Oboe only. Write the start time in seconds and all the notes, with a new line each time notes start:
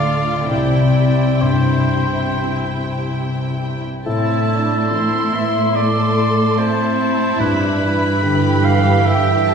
Already playing: D5
0.50 D5
1.41 C5
4.05 A4
5.35 E5
5.75 D5
6.58 C5
7.40 B4
8.65 F5
9.06 E5